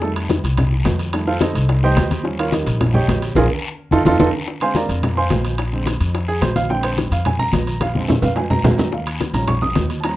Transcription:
Already playing: upright bass F2
0.02 grand piano D#3 G3 A3 A4, high bongo, high conga, long guiro
0.16 high bongo, high conga, high timbale
0.29 high bongo, high conga, high timbale, low timbale, short guiro
0.44 upright bass C2, high bongo, high conga, high timbale, short guiro
0.57 high bongo, high conga, low conga, high timbale, long guiro
0.72 high bongo, high conga
0.85 upright bass F2, high bongo, low bongo, high conga, high timbale, low timbale, short guiro
0.99 high conga, high timbale, short guiro
1.13 grand piano D#3 G3 A3, high bongo, high conga, high timbale, long guiro
1.27 grand piano F4 A4 C5 F5, high bongo, high conga
1.41 grand piano D#4 A4 C5 D#5, high bongo, high conga, high timbale, low timbale, short guiro
1.55 upright bass C2, high bongo, high conga, high timbale, short guiro
1.69 high bongo, high conga, high timbale, long guiro
1.83 grand piano D#3 G3 A3 G4 C5 D#5 G5, high bongo, high conga
1.96 upright bass D#2, high bongo, low bongo, high conga, high timbale, low timbale, short guiro
2.11 high conga, high timbale, short guiro
2.23 grand piano F3 G3 C#4, high bongo, high conga, long guiro
2.39 grand piano F4 A#4 C#5 F5, high bongo, high conga, high timbale
2.52 grand piano D#4 G4 A#4 D#5, high bongo, high conga, high timbale, low timbale, short guiro
2.66 upright bass A#1, high bongo, high conga, high timbale, short guiro
2.80 grand piano F3 G3 C#4, high bongo, high conga, low conga, high timbale, long guiro
2.94 grand piano G4 C#5 D#5 G5, high bongo, high conga, low conga
3.08 upright bass A#1, high bongo, low bongo, high conga, high timbale, low timbale, short guiro
3.22 high conga, high timbale, short guiro
3.35 upright bass A#1, grand piano F4 G#4 A#4, low bongo, high conga, high timbale, long guiro
3.91 upright bass F2, grand piano D#4 F4 A4, low bongo, high conga, high timbale, long guiro
4.05 upright bass F2, grand piano D#4 F4 A4, low bongo, high conga, high timbale, long guiro
4.19 upright bass F2, grand piano D#4 F4 A4, low bongo, high conga, high timbale, long guiro
4.47 high bongo, high conga, long guiro
4.61 grand piano D3 G#3 C4 C5 F5 G#5 C6, high bongo, high conga, high timbale
4.75 grand piano A#4 D5 F5 A#5, high bongo, high conga, high timbale, low timbale, short guiro
4.89 upright bass F2, high bongo, high conga, high timbale, short guiro
5.03 high bongo, high conga, low conga, high timbale, long guiro
5.17 grand piano C5 F5 G#5 C6, high bongo, high conga
5.30 upright bass A#1, high bongo, low bongo, high conga, high timbale, low timbale, short guiro
5.45 high conga, high timbale, short guiro
5.58 high bongo, high conga, high timbale, long guiro
5.72 grand piano D3 G#3 C4, high bongo, high conga
5.86 high bongo, high conga, high timbale, low timbale, short guiro
6.00 upright bass F2, high bongo, high conga, high timbale, short guiro
6.14 high bongo, high conga, high timbale, long guiro
6.28 grand piano G#4, high bongo, high conga
6.42 upright bass A#1, grand piano C5, high bongo, low bongo, high conga, high timbale, low timbale, short guiro
6.56 grand piano F5, high conga, high timbale, short guiro
6.69 grand piano D3 G#3 C4 G5, high bongo, high conga, long guiro
6.83 grand piano C5, high bongo, high conga, high timbale
6.98 high bongo, high conga, high timbale, low timbale, short guiro
7.11 upright bass F2, grand piano F5, high bongo, high conga, high timbale, short guiro
7.25 grand piano G#5, high bongo, high conga, low conga, high timbale, long guiro
7.39 grand piano A#5, high bongo, high conga, low conga
7.52 upright bass A#1, high bongo, low bongo, high conga, high timbale, low timbale, short guiro
7.67 high conga, high timbale, short guiro
7.81 grand piano F5, high bongo, high conga, high timbale, long guiro
7.95 grand piano D3 G#3 C4, high bongo, high conga
8.08 high bongo, low conga, high timbale, short guiro
8.22 upright bass F2, grand piano F5, high bongo, low conga, high timbale, short guiro
8.36 grand piano G#5, high bongo, low timbale, long guiro
8.50 grand piano A#5, high bongo, low conga, low timbale
8.63 upright bass D#2, high bongo, low bongo, low conga, low timbale, short guiro
8.78 low conga, low timbale, short guiro
8.92 grand piano F5, high bongo, high conga, long guiro
9.07 high bongo, high conga, high timbale
9.20 high bongo, high conga, high timbale, low timbale, short guiro
9.34 upright bass A#1, grand piano F3 G3 C#4 A#5, high bongo, high conga, high timbale, short guiro
9.48 grand piano C#6, high bongo, high conga, low conga, high timbale, long guiro
9.62 grand piano D#6, high bongo, high conga, low conga
9.75 upright bass D#2, high bongo, low bongo, high conga, high timbale, low timbale, short guiro
9.90 high conga, high timbale, short guiro
10.01 grand piano G3 A5, high bongo, high conga, high timbale, long guiro
10.05 grand piano F3 C#4 A#5

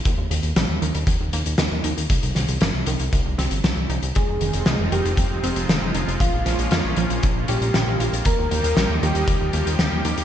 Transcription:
0.05 analog synth bass D#2, kick, closed hi-hat
0.18 analog synth bass D#2
0.31 analog synth bass D#2, synth arpeggio sound D#3, closed hi-hat
0.43 analog synth bass D#2, closed hi-hat
0.56 analog synth bass A#1, synth arpeggio sound G3, snare, closed hi-hat
0.69 analog synth bass D#2
0.82 analog synth bass D#2, synth arpeggio sound D#3, closed hi-hat
0.95 analog synth bass D#2, closed hi-hat
1.07 analog synth bass D#2, kick, closed hi-hat
1.21 analog synth bass D#2
1.33 analog synth bass D#2, synth arpeggio sound A#3, closed hi-hat
1.46 analog synth bass D#2, closed hi-hat
1.58 analog synth bass D#2, synth arpeggio sound D#3, snare, closed hi-hat
1.72 analog synth bass D#2
1.84 analog synth bass D#2, synth arpeggio sound D#4, closed hi-hat
1.97 analog synth bass D#2, closed hi-hat
2.10 analog synth bass C2, kick, closed hi-hat
2.23 analog synth bass C2, closed hi-hat
2.35 analog synth bass C2, synth arpeggio sound D#3, snare, closed hi-hat
2.48 analog synth bass C2, closed hi-hat
2.61 analog synth bass G1, synth arpeggio sound A#3, snare, closed hi-hat
2.74 analog synth bass C2
2.86 analog synth bass C2, synth arpeggio sound D#3, closed hi-hat
2.99 analog synth bass C2, closed hi-hat
3.13 analog synth bass C2, kick, closed hi-hat
3.26 analog synth bass C2
3.38 analog synth bass C2, synth arpeggio sound C4, snare, closed hi-hat
3.51 analog synth bass G1, closed hi-hat
3.64 analog synth bass C2, synth arpeggio sound D#3, snare, closed hi-hat
3.77 analog synth bass C2
3.90 analog synth bass C2, synth arpeggio sound D#4, closed hi-hat
4.02 analog synth bass C2, closed hi-hat
4.15 analog synth bass F1, analog synth pad F3 G#3 C4 D#4 F4, analog synth lead G#4, kick, closed hi-hat
4.28 analog synth bass F1
4.41 analog synth bass F1, synth arpeggio sound D#3, closed hi-hat
4.53 analog synth bass F1, closed hi-hat
4.66 analog synth bass C2, synth arpeggio sound G#3, snare, closed hi-hat
4.79 analog synth bass F1
4.92 analog synth bass F1, synth arpeggio sound D#3, analog synth lead G4, closed hi-hat
5.05 analog synth bass F1, closed hi-hat
5.17 analog synth bass F1, kick, closed hi-hat
5.31 analog synth bass F1
5.44 analog synth bass F1, synth arpeggio sound C4, closed hi-hat
5.56 analog synth bass F1, closed hi-hat
5.69 analog synth bass F1, synth arpeggio sound D#3, snare, closed hi-hat
5.82 analog synth bass F1
5.95 analog synth bass F1, synth arpeggio sound D#4, closed hi-hat
6.08 analog synth bass F1, closed hi-hat
6.20 analog synth bass A#1, analog synth pad A#3 C#4, analog synth lead F4, kick, closed hi-hat
6.33 analog synth bass A#1
6.46 analog synth bass A#1, synth arpeggio sound F3, snare, closed hi-hat
6.59 analog synth bass A#1, closed hi-hat
6.71 analog synth bass F2, synth arpeggio sound A#3, snare, closed hi-hat
6.84 analog synth bass A#1
6.96 analog synth bass A#1, synth arpeggio sound F3, closed hi-hat
7.10 analog synth bass A#1, closed hi-hat
7.23 analog synth bass A#1, kick, closed hi-hat
7.36 analog synth bass A#1
7.48 analog synth bass A#1, synth arpeggio sound C#4, analog synth lead G4, closed hi-hat
7.61 analog synth bass A#1, closed hi-hat
7.74 analog synth bass A#1, synth arpeggio sound F3, snare, closed hi-hat
7.87 analog synth bass A#1
8.00 analog synth bass A#1, synth arpeggio sound F4, closed hi-hat
8.13 analog synth bass A#1, closed hi-hat
8.25 analog synth bass D#2, analog synth pad F3 G3 D#4 G4, analog synth lead A#4, kick, closed hi-hat
8.38 analog synth bass D#2
8.51 analog synth bass D#2, synth arpeggio sound D#3, closed hi-hat
8.64 analog synth bass D#2, closed hi-hat
8.77 analog synth bass A#1, synth arpeggio sound G3, snare, closed hi-hat
8.89 analog synth bass D#2
9.02 analog synth bass D#2, synth arpeggio sound D#3, analog synth lead G4, closed hi-hat
9.15 analog synth bass D#2, closed hi-hat
9.27 analog synth bass D#2, kick, closed hi-hat
9.41 analog synth bass D#2
9.53 analog synth bass D#2, synth arpeggio sound A#3, closed hi-hat
9.66 analog synth bass D#2, closed hi-hat
9.79 analog synth bass D#2, synth arpeggio sound D#3, snare, closed hi-hat
9.92 analog synth bass D#2
10.05 analog synth bass D#2, synth arpeggio sound D#4, closed hi-hat
10.17 analog synth bass D#2, closed hi-hat

